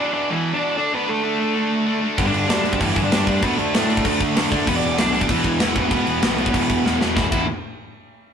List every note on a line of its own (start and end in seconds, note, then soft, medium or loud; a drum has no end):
0.00 0.14 E2 medium
0.00 0.14 B2 medium
0.00 0.13 E3 medium
0.00 0.12 D4 medium
0.00 0.12 D5 medium
0.13 0.28 E2 medium
0.13 0.29 B2 medium
0.13 0.29 E3 medium
0.13 0.30 D4 loud
0.13 0.30 D5 medium
0.30 0.59 E2 medium
0.30 0.60 B2 loud
0.30 0.52 E3 medium
0.30 0.60 E3 loud
0.30 0.54 E4 medium
0.53 0.75 D4 loud
0.53 0.76 D5 medium
0.61 0.76 E2 medium
0.61 0.76 B2 medium
0.61 0.76 E3 loud
0.77 0.92 D3 loud
0.77 0.91 A3 loud
0.77 0.93 D4 loud
0.77 0.92 D4 medium
0.77 0.92 D5 medium
0.92 1.23 D3 medium
0.92 1.22 A3 medium
0.92 1.09 B3 loud
0.92 1.22 D4 loud
0.92 1.09 B4 medium
1.09 2.03 A3 loud
1.09 1.99 A4 medium
1.23 1.38 D3 medium
1.23 1.39 A3 medium
1.23 1.40 D4 loud
1.39 1.55 D3 medium
1.39 1.54 A3 medium
1.39 1.54 D4 loud
1.55 1.86 D3 medium
1.55 1.86 A3 loud
1.55 1.86 D4 loud
1.86 2.00 D3 medium
1.86 2.01 A3 medium
1.86 2.02 D4 medium
2.01 2.17 D3 medium
2.01 2.17 A3 medium
2.01 3.43 D4 medium
2.17 2.33 G1 loud
2.17 2.47 G2 medium
2.17 2.47 D3 medium
2.17 2.48 G3 loud
2.17 2.26 B3 loud
2.17 2.26 B4 medium
2.17 kick loud
2.17 crash medium
2.26 2.48 D4 loud
2.26 2.48 D5 medium
2.33 2.48 G1 loud
2.33 crash medium
2.48 2.78 D2 loud
2.48 2.63 G2 medium
2.48 2.62 D3 medium
2.48 2.62 G3 medium
2.48 2.78 D4 medium
2.48 2.79 D5 medium
2.48 snare loud
2.48 crash medium
2.63 2.78 G2 medium
2.63 2.78 D3 medium
2.63 2.79 G3 medium
2.63 crash medium
2.73 kick loud
2.79 2.95 G1 loud
2.79 3.10 G2 medium
2.79 3.11 D3 loud
2.79 3.03 E3 medium
2.79 3.11 G3 loud
2.79 3.02 E4 loud
2.79 kick loud
2.79 crash medium
2.96 3.11 G1 medium
2.96 kick medium
2.96 crash medium
3.04 3.27 D4 medium
3.04 3.26 D5 medium
3.11 3.26 G1 medium
3.11 3.26 G2 loud
3.11 3.26 D3 medium
3.11 3.25 G3 loud
3.11 snare loud
3.11 crash medium
3.26 3.42 G2 medium
3.26 3.41 D3 medium
3.26 3.42 G3 medium
3.26 3.44 D4 loud
3.26 3.43 D5 medium
3.26 kick medium
3.26 crash medium
3.43 3.57 D2 loud
3.43 3.72 D3 medium
3.43 3.73 A3 loud
3.43 3.59 B3 loud
3.43 3.73 D4 loud
3.43 3.58 B4 medium
3.43 kick loud
3.43 crash medium
3.58 3.73 D2 medium
3.58 4.48 A3 loud
3.58 4.49 A4 medium
3.58 crash medium
3.73 4.03 A2 loud
3.73 3.89 D3 medium
3.73 3.88 A3 medium
3.73 3.88 D4 medium
3.73 snare loud
3.73 crash loud
3.89 4.02 D3 medium
3.89 4.03 A3 loud
3.89 4.03 D4 loud
3.89 crash medium
3.97 kick loud
4.03 4.20 D2 medium
4.03 4.34 D3 loud
4.03 4.35 A3 loud
4.03 4.35 D4 loud
4.03 kick loud
4.03 crash loud
4.21 4.35 D2 medium
4.21 kick medium
4.21 crash medium
4.35 4.51 D2 medium
4.35 4.50 D3 medium
4.35 4.49 A3 medium
4.35 4.49 D4 loud
4.35 snare loud
4.35 crash loud
4.51 4.66 D3 medium
4.51 4.67 D3 loud
4.51 4.66 A3 medium
4.51 4.66 D4 loud
4.51 kick medium
4.51 crash medium
4.66 4.82 E1 loud
4.66 4.97 E2 loud
4.66 4.97 B2 loud
4.66 4.98 E3 loud
4.66 4.76 B3 medium
4.66 4.76 B4 medium
4.66 kick loud
4.66 crash medium
4.75 4.98 D4 loud
4.75 4.98 D5 medium
4.83 4.98 E1 loud
4.83 crash medium
4.97 5.28 B1 loud
4.97 5.14 E2 medium
4.97 5.12 B2 loud
4.97 5.12 E3 loud
4.97 5.28 D4 medium
4.97 5.28 D5 medium
4.97 snare loud
4.97 crash medium
5.13 5.28 E2 medium
5.13 5.28 B2 medium
5.13 5.29 E3 loud
5.13 crash medium
5.21 kick loud
5.28 5.44 E1 loud
5.28 5.59 E2 loud
5.28 5.58 B2 loud
5.28 5.60 E3 loud
5.28 5.59 E3 medium
5.28 5.59 E4 medium
5.28 kick loud
5.28 crash loud
5.44 5.60 E1 loud
5.44 kick medium
5.44 crash medium
5.59 5.75 E1 medium
5.59 5.75 E2 medium
5.59 5.75 B2 medium
5.59 5.76 E3 loud
5.59 5.75 E3 medium
5.59 5.77 E4 medium
5.59 snare loud
5.59 crash medium
5.75 5.90 E1 loud
5.75 5.91 E2 loud
5.75 5.90 B2 loud
5.75 5.90 E3 loud
5.75 6.98 B3 loud
5.75 6.98 B4 medium
5.75 kick loud
5.75 crash medium
5.91 6.06 E1 loud
5.91 6.23 E2 medium
5.91 6.22 B2 loud
5.91 6.22 E3 loud
5.91 kick loud
5.91 crash medium
6.06 6.21 E1 medium
6.06 crash medium
6.22 6.52 B1 loud
6.22 6.37 E2 medium
6.22 6.38 B2 medium
6.22 6.38 E3 medium
6.22 snare loud
6.22 crash medium
6.38 6.54 E2 medium
6.38 6.54 B2 medium
6.38 6.53 E3 medium
6.38 crash medium
6.46 kick medium
6.54 6.69 E1 medium
6.54 6.85 E2 loud
6.54 6.85 B2 loud
6.54 6.84 E3 loud
6.54 kick loud
6.54 crash loud
6.70 6.85 E1 medium
6.70 kick medium
6.70 crash medium
6.85 7.00 E1 medium
6.85 7.00 E2 medium
6.85 7.00 B2 medium
6.85 7.01 E3 loud
6.85 snare medium
7.00 7.16 E2 medium
7.00 7.16 B2 medium
7.00 7.16 E3 medium
7.00 snare loud
7.16 7.25 E1 loud
7.16 7.27 E2 loud
7.16 7.27 B2 medium
7.16 7.27 E3 loud
7.16 7.25 E4 medium
7.16 kick loud
7.16 snare medium
7.31 7.47 E1 loud
7.31 7.45 E2 loud
7.31 7.45 B2 loud
7.31 7.46 E3 loud
7.31 7.46 E4 medium
7.31 kick loud
7.31 crash medium